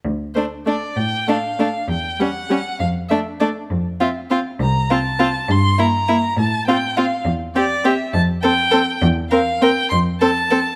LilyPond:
<<
  \new Staff \with { instrumentName = "Violin" } { \time 6/8 \key d \minor \tempo 4. = 67 r8 c''8 d''8 g''8 f''4 | g''8 fis''4 f''8 e''8 d''8 | r8 e''8 f''8 bes''8 a''4 | c'''8 bes''4 a''8 g''8 f''8 |
\key f \major r8 d''8 e''8 a''8 g''4 | r8 f''8 g''8 c'''8 a''4 | }
  \new Staff \with { instrumentName = "Violin" } { \time 6/8 \key d \minor r8 d'8 d'8 r8 d'8 d'8 | r8 cis'8 cis'8 r8 d'8 d'8 | r8 f'8 f'8 r8 f'8 f'8 | r8 e'8 e'8 r8 f'8 f'8 |
\key f \major r8 g'8 g'8 r8 a'8 a'8 | r8 bes'8 bes'8 r8 a'8 a'8 | }
  \new Staff \with { instrumentName = "Viola" } { \time 6/8 \key d \minor r8 a8 a8 r8 a8 a8 | r8 g8 g8 r8 a8 a8 | r8 c'8 c'8 r8 c'8 c'8 | r8 bes8 bes8 r8 c'8 c'8 |
\key f \major r8 c'8 c'8 r8 c'8 c'8 | r8 c'8 c'8 r8 c'8 c'8 | }
  \new Staff \with { instrumentName = "Cello" } { \clef bass \time 6/8 \key d \minor d,4. a,4. | e,4. f,4. | f,4. c,4. | g,4. a,4. |
\key f \major e,4. f,4. | e,4. f,4. | }
>>